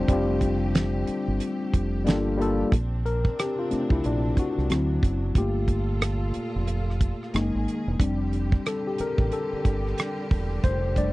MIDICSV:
0, 0, Header, 1, 6, 480
1, 0, Start_track
1, 0, Tempo, 659341
1, 60, Time_signature, 4, 2, 24, 8
1, 8101, End_track
2, 0, Start_track
2, 0, Title_t, "Tine electric piano"
2, 0, Program_c, 0, 4
2, 0, Control_c, 0, 64, 127
2, 0, Note_on_c, 0, 55, 88
2, 0, Note_on_c, 0, 60, 77
2, 0, Note_on_c, 0, 62, 82
2, 0, Note_on_c, 0, 65, 76
2, 0, Note_on_c, 0, 72, 94
2, 60, Note_off_c, 0, 55, 0
2, 60, Note_on_c, 0, 55, 87
2, 68, Note_off_c, 0, 60, 0
2, 68, Note_on_c, 0, 60, 78
2, 76, Note_off_c, 0, 62, 0
2, 76, Note_on_c, 0, 62, 72
2, 86, Note_off_c, 0, 65, 0
2, 86, Note_on_c, 0, 65, 79
2, 94, Note_on_c, 0, 67, 93
2, 817, Note_off_c, 0, 55, 0
2, 821, Note_off_c, 0, 60, 0
2, 825, Note_off_c, 0, 62, 0
2, 830, Note_off_c, 0, 65, 0
2, 834, Note_off_c, 0, 67, 0
2, 1488, Note_on_c, 0, 55, 78
2, 1498, Note_on_c, 0, 58, 76
2, 1507, Note_on_c, 0, 62, 77
2, 1508, Control_c, 0, 64, 0
2, 1513, Note_on_c, 0, 65, 76
2, 1516, Note_off_c, 0, 72, 0
2, 1521, Note_on_c, 0, 69, 85
2, 1629, Control_c, 0, 64, 127
2, 1695, Note_off_c, 0, 55, 0
2, 1700, Note_off_c, 0, 58, 0
2, 1705, Note_off_c, 0, 62, 0
2, 1708, Note_off_c, 0, 65, 0
2, 1712, Note_off_c, 0, 69, 0
2, 1730, Note_on_c, 0, 55, 85
2, 1738, Note_on_c, 0, 58, 79
2, 1744, Note_on_c, 0, 62, 73
2, 1752, Note_on_c, 0, 65, 77
2, 1761, Note_on_c, 0, 69, 97
2, 1933, Note_off_c, 0, 55, 0
2, 1937, Note_off_c, 0, 58, 0
2, 1940, Note_off_c, 0, 62, 0
2, 1944, Note_off_c, 0, 65, 0
2, 1948, Note_off_c, 0, 69, 0
2, 1989, Control_c, 0, 64, 0
2, 2138, Control_c, 0, 64, 127
2, 2225, Note_on_c, 0, 70, 95
2, 2446, Note_off_c, 0, 70, 0
2, 2472, Note_on_c, 0, 67, 87
2, 2599, Note_off_c, 0, 67, 0
2, 2613, Note_on_c, 0, 65, 76
2, 2699, Note_on_c, 0, 57, 56
2, 2702, Note_on_c, 0, 60, 48
2, 2707, Note_on_c, 0, 62, 59
2, 2855, Note_off_c, 0, 65, 0
2, 2855, Note_on_c, 0, 64, 83
2, 2896, Note_off_c, 0, 64, 0
2, 2947, Note_off_c, 0, 62, 0
2, 2955, Note_on_c, 0, 62, 76
2, 3172, Note_off_c, 0, 62, 0
2, 3198, Note_on_c, 0, 66, 88
2, 3391, Note_off_c, 0, 57, 0
2, 3392, Note_off_c, 0, 60, 0
2, 3420, Note_on_c, 0, 54, 55
2, 3422, Note_on_c, 0, 60, 47
2, 3425, Note_on_c, 0, 64, 57
2, 3429, Control_c, 0, 64, 0
2, 3550, Control_c, 0, 64, 127
2, 3876, Note_off_c, 0, 54, 0
2, 3877, Note_off_c, 0, 60, 0
2, 3879, Note_off_c, 0, 64, 0
2, 3903, Note_on_c, 0, 57, 54
2, 3907, Note_on_c, 0, 58, 47
2, 3910, Control_c, 0, 64, 0
2, 3913, Note_on_c, 0, 65, 62
2, 3918, Note_on_c, 0, 67, 81
2, 3930, Note_off_c, 0, 66, 0
2, 4050, Control_c, 0, 64, 127
2, 4238, Note_off_c, 0, 57, 0
2, 4240, Note_off_c, 0, 58, 0
2, 4243, Note_off_c, 0, 65, 0
2, 4600, Note_off_c, 0, 67, 0
2, 5344, Note_on_c, 0, 56, 54
2, 5347, Note_on_c, 0, 58, 47
2, 5351, Control_c, 0, 64, 0
2, 5352, Note_on_c, 0, 63, 63
2, 5485, Control_c, 0, 64, 127
2, 5679, Note_off_c, 0, 56, 0
2, 5680, Note_off_c, 0, 58, 0
2, 5683, Note_off_c, 0, 63, 0
2, 5822, Note_on_c, 0, 55, 57
2, 5825, Note_on_c, 0, 60, 50
2, 5831, Control_c, 0, 64, 0
2, 5831, Note_on_c, 0, 62, 63
2, 5948, Control_c, 0, 64, 127
2, 6316, Note_on_c, 0, 69, 79
2, 6455, Note_off_c, 0, 69, 0
2, 6459, Note_on_c, 0, 67, 70
2, 6500, Note_off_c, 0, 67, 0
2, 6557, Note_on_c, 0, 70, 84
2, 6791, Note_on_c, 0, 69, 82
2, 6796, Note_off_c, 0, 70, 0
2, 7712, Note_off_c, 0, 55, 0
2, 7714, Note_off_c, 0, 60, 0
2, 7717, Note_off_c, 0, 62, 0
2, 7746, Note_on_c, 0, 72, 100
2, 7775, Note_off_c, 0, 69, 0
2, 7988, Note_on_c, 0, 55, 56
2, 7991, Note_off_c, 0, 72, 0
2, 7992, Note_on_c, 0, 74, 90
2, 7994, Note_on_c, 0, 57, 52
2, 7998, Note_on_c, 0, 62, 62
2, 8101, Note_off_c, 0, 55, 0
2, 8101, Note_off_c, 0, 57, 0
2, 8101, Note_off_c, 0, 62, 0
2, 8101, Note_off_c, 0, 74, 0
2, 8101, End_track
3, 0, Start_track
3, 0, Title_t, "String section"
3, 0, Program_c, 1, 48
3, 0, Note_on_c, 1, 50, 74
3, 0, Note_on_c, 1, 57, 70
3, 0, Note_on_c, 1, 67, 88
3, 1473, Note_off_c, 1, 50, 0
3, 1473, Note_off_c, 1, 57, 0
3, 1503, Note_on_c, 1, 53, 65
3, 1507, Note_on_c, 1, 58, 63
3, 1952, Note_off_c, 1, 67, 0
3, 1977, Note_off_c, 1, 53, 0
3, 1979, Note_off_c, 1, 58, 0
3, 1987, Note_on_c, 1, 62, 88
3, 1988, Note_on_c, 1, 48, 73
3, 1989, Note_on_c, 1, 60, 69
3, 3410, Note_off_c, 1, 60, 0
3, 3419, Note_on_c, 1, 54, 60
3, 3885, Note_off_c, 1, 48, 0
3, 3885, Note_off_c, 1, 62, 0
3, 3895, Note_off_c, 1, 54, 0
3, 3900, Note_on_c, 1, 46, 81
3, 3900, Note_on_c, 1, 65, 83
3, 3900, Note_on_c, 1, 69, 70
3, 5326, Note_off_c, 1, 46, 0
3, 5326, Note_off_c, 1, 65, 0
3, 5326, Note_off_c, 1, 69, 0
3, 5341, Note_on_c, 1, 68, 71
3, 5344, Note_on_c, 1, 58, 61
3, 5345, Note_on_c, 1, 51, 68
3, 5816, Note_off_c, 1, 68, 0
3, 5818, Note_off_c, 1, 51, 0
3, 5818, Note_off_c, 1, 58, 0
3, 5822, Note_on_c, 1, 67, 82
3, 5823, Note_on_c, 1, 50, 80
3, 5823, Note_on_c, 1, 55, 73
3, 8101, Note_off_c, 1, 50, 0
3, 8101, Note_off_c, 1, 55, 0
3, 8101, Note_off_c, 1, 67, 0
3, 8101, End_track
4, 0, Start_track
4, 0, Title_t, "Fingered electric bass"
4, 0, Program_c, 2, 33
4, 65, Note_on_c, 2, 29, 105
4, 754, Note_off_c, 2, 29, 0
4, 931, Note_on_c, 2, 31, 87
4, 1010, Note_off_c, 2, 31, 0
4, 1270, Note_on_c, 2, 29, 78
4, 1511, Note_off_c, 2, 29, 0
4, 1511, Note_on_c, 2, 31, 89
4, 1911, Note_off_c, 2, 31, 0
4, 1988, Note_on_c, 2, 34, 95
4, 2389, Note_off_c, 2, 34, 0
4, 2848, Note_on_c, 2, 36, 87
4, 2928, Note_off_c, 2, 36, 0
4, 2949, Note_on_c, 2, 34, 94
4, 3148, Note_off_c, 2, 34, 0
4, 3334, Note_on_c, 2, 36, 83
4, 3412, Note_off_c, 2, 36, 0
4, 3428, Note_on_c, 2, 38, 92
4, 3627, Note_off_c, 2, 38, 0
4, 3665, Note_on_c, 2, 30, 90
4, 3865, Note_off_c, 2, 30, 0
4, 3905, Note_on_c, 2, 31, 99
4, 4594, Note_off_c, 2, 31, 0
4, 4775, Note_on_c, 2, 29, 82
4, 5174, Note_off_c, 2, 29, 0
4, 5347, Note_on_c, 2, 30, 96
4, 5464, Note_off_c, 2, 30, 0
4, 5494, Note_on_c, 2, 32, 82
4, 5572, Note_off_c, 2, 32, 0
4, 5734, Note_on_c, 2, 28, 89
4, 5812, Note_off_c, 2, 28, 0
4, 5827, Note_on_c, 2, 29, 92
4, 6228, Note_off_c, 2, 29, 0
4, 6688, Note_on_c, 2, 33, 83
4, 6768, Note_off_c, 2, 33, 0
4, 7028, Note_on_c, 2, 31, 86
4, 7227, Note_off_c, 2, 31, 0
4, 7512, Note_on_c, 2, 28, 82
4, 7709, Note_off_c, 2, 28, 0
4, 7749, Note_on_c, 2, 29, 100
4, 8101, Note_off_c, 2, 29, 0
4, 8101, End_track
5, 0, Start_track
5, 0, Title_t, "Muted fingered electric bass strokes"
5, 2712, Note_on_c, 9, 29, 45
5, 2785, Note_off_c, 9, 29, 0
5, 4634, Note_on_c, 9, 29, 44
5, 4707, Note_off_c, 9, 29, 0
5, 6550, Note_on_c, 9, 29, 45
5, 6623, Note_off_c, 9, 29, 0
5, 6936, Note_on_c, 9, 29, 45
5, 7009, Note_off_c, 9, 29, 0
5, 8101, End_track
6, 0, Start_track
6, 0, Title_t, "Drums"
6, 61, Note_on_c, 9, 36, 107
6, 64, Note_on_c, 9, 42, 84
6, 134, Note_off_c, 9, 36, 0
6, 137, Note_off_c, 9, 42, 0
6, 298, Note_on_c, 9, 36, 77
6, 302, Note_on_c, 9, 42, 54
6, 371, Note_off_c, 9, 36, 0
6, 375, Note_off_c, 9, 42, 0
6, 545, Note_on_c, 9, 42, 97
6, 549, Note_on_c, 9, 38, 117
6, 618, Note_off_c, 9, 42, 0
6, 622, Note_off_c, 9, 38, 0
6, 781, Note_on_c, 9, 42, 74
6, 854, Note_off_c, 9, 42, 0
6, 1020, Note_on_c, 9, 42, 69
6, 1093, Note_off_c, 9, 42, 0
6, 1264, Note_on_c, 9, 36, 79
6, 1267, Note_on_c, 9, 42, 55
6, 1336, Note_off_c, 9, 36, 0
6, 1339, Note_off_c, 9, 42, 0
6, 1505, Note_on_c, 9, 42, 86
6, 1519, Note_on_c, 9, 38, 93
6, 1578, Note_off_c, 9, 42, 0
6, 1592, Note_off_c, 9, 38, 0
6, 1758, Note_on_c, 9, 42, 59
6, 1831, Note_off_c, 9, 42, 0
6, 1981, Note_on_c, 9, 36, 105
6, 1990, Note_on_c, 9, 42, 77
6, 2054, Note_off_c, 9, 36, 0
6, 2063, Note_off_c, 9, 42, 0
6, 2228, Note_on_c, 9, 42, 50
6, 2300, Note_off_c, 9, 42, 0
6, 2364, Note_on_c, 9, 36, 89
6, 2437, Note_off_c, 9, 36, 0
6, 2468, Note_on_c, 9, 42, 84
6, 2473, Note_on_c, 9, 37, 109
6, 2541, Note_off_c, 9, 42, 0
6, 2545, Note_off_c, 9, 37, 0
6, 2702, Note_on_c, 9, 42, 69
6, 2720, Note_on_c, 9, 37, 28
6, 2774, Note_off_c, 9, 42, 0
6, 2793, Note_off_c, 9, 37, 0
6, 2841, Note_on_c, 9, 36, 78
6, 2914, Note_off_c, 9, 36, 0
6, 2941, Note_on_c, 9, 42, 75
6, 3013, Note_off_c, 9, 42, 0
6, 3181, Note_on_c, 9, 36, 80
6, 3185, Note_on_c, 9, 42, 54
6, 3253, Note_off_c, 9, 36, 0
6, 3257, Note_off_c, 9, 42, 0
6, 3341, Note_on_c, 9, 37, 36
6, 3414, Note_off_c, 9, 37, 0
6, 3420, Note_on_c, 9, 42, 73
6, 3435, Note_on_c, 9, 37, 92
6, 3493, Note_off_c, 9, 42, 0
6, 3508, Note_off_c, 9, 37, 0
6, 3661, Note_on_c, 9, 36, 94
6, 3671, Note_on_c, 9, 42, 54
6, 3733, Note_off_c, 9, 36, 0
6, 3744, Note_off_c, 9, 42, 0
6, 3896, Note_on_c, 9, 36, 105
6, 3898, Note_on_c, 9, 42, 76
6, 3969, Note_off_c, 9, 36, 0
6, 3971, Note_off_c, 9, 42, 0
6, 4134, Note_on_c, 9, 36, 75
6, 4137, Note_on_c, 9, 42, 50
6, 4207, Note_off_c, 9, 36, 0
6, 4210, Note_off_c, 9, 42, 0
6, 4379, Note_on_c, 9, 42, 84
6, 4383, Note_on_c, 9, 37, 113
6, 4452, Note_off_c, 9, 42, 0
6, 4456, Note_off_c, 9, 37, 0
6, 4615, Note_on_c, 9, 42, 71
6, 4687, Note_off_c, 9, 42, 0
6, 4858, Note_on_c, 9, 42, 70
6, 4931, Note_off_c, 9, 42, 0
6, 5026, Note_on_c, 9, 37, 36
6, 5099, Note_off_c, 9, 37, 0
6, 5101, Note_on_c, 9, 36, 85
6, 5103, Note_on_c, 9, 42, 52
6, 5174, Note_off_c, 9, 36, 0
6, 5176, Note_off_c, 9, 42, 0
6, 5263, Note_on_c, 9, 37, 35
6, 5336, Note_off_c, 9, 37, 0
6, 5343, Note_on_c, 9, 42, 77
6, 5357, Note_on_c, 9, 37, 97
6, 5415, Note_off_c, 9, 42, 0
6, 5430, Note_off_c, 9, 37, 0
6, 5592, Note_on_c, 9, 42, 56
6, 5665, Note_off_c, 9, 42, 0
6, 5821, Note_on_c, 9, 36, 102
6, 5828, Note_on_c, 9, 42, 81
6, 5894, Note_off_c, 9, 36, 0
6, 5901, Note_off_c, 9, 42, 0
6, 6063, Note_on_c, 9, 42, 54
6, 6136, Note_off_c, 9, 42, 0
6, 6204, Note_on_c, 9, 36, 94
6, 6277, Note_off_c, 9, 36, 0
6, 6304, Note_on_c, 9, 42, 87
6, 6309, Note_on_c, 9, 37, 105
6, 6377, Note_off_c, 9, 42, 0
6, 6381, Note_off_c, 9, 37, 0
6, 6540, Note_on_c, 9, 42, 66
6, 6558, Note_on_c, 9, 37, 31
6, 6612, Note_off_c, 9, 42, 0
6, 6631, Note_off_c, 9, 37, 0
6, 6684, Note_on_c, 9, 36, 81
6, 6757, Note_off_c, 9, 36, 0
6, 6782, Note_on_c, 9, 42, 70
6, 6854, Note_off_c, 9, 42, 0
6, 7025, Note_on_c, 9, 36, 83
6, 7028, Note_on_c, 9, 42, 53
6, 7097, Note_off_c, 9, 36, 0
6, 7101, Note_off_c, 9, 42, 0
6, 7186, Note_on_c, 9, 37, 36
6, 7259, Note_off_c, 9, 37, 0
6, 7264, Note_on_c, 9, 42, 78
6, 7278, Note_on_c, 9, 37, 95
6, 7336, Note_off_c, 9, 42, 0
6, 7351, Note_off_c, 9, 37, 0
6, 7506, Note_on_c, 9, 36, 92
6, 7516, Note_on_c, 9, 46, 39
6, 7579, Note_off_c, 9, 36, 0
6, 7589, Note_off_c, 9, 46, 0
6, 7743, Note_on_c, 9, 36, 106
6, 7749, Note_on_c, 9, 42, 86
6, 7816, Note_off_c, 9, 36, 0
6, 7822, Note_off_c, 9, 42, 0
6, 7980, Note_on_c, 9, 36, 79
6, 7985, Note_on_c, 9, 42, 56
6, 8053, Note_off_c, 9, 36, 0
6, 8058, Note_off_c, 9, 42, 0
6, 8101, End_track
0, 0, End_of_file